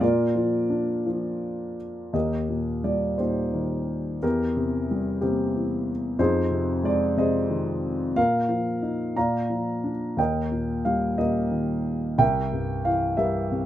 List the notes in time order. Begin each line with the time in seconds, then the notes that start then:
0.01 A#2 F4 A#4 D5
0.35 F3
0.70 D4
1.06 F3
2.13 D#2 G4 A#4 D#5
2.49 A#2
2.84 G3 D5
3.18 A#2 D#4 G4 C5
3.54 D#3
4.23 E2 G4 A#4
4.57 C3
4.91 G3
5.21 C3 A#3 C4 G4
5.55 E3
6.19 F2 D#4 G#4 C5
6.51 C3
6.83 G#3 D5
7.17 C3 G#4 C5 D#5
7.50 D#3
8.16 A#2 A#4 F5
8.49 F3
8.82 D#4
9.16 A#2 D5 F5 A#5
9.50 F3
9.84 D4
10.17 D#2 A#4 D#5 G5
10.52 A#2
10.85 G3 F5
11.18 A#2 G4 A#4 D#5
11.52 D#3
12.18 C2 A#4 E5 G5
12.53 G2
12.85 E3 F5
13.17 G2 G4 A#4 E5
13.52 C3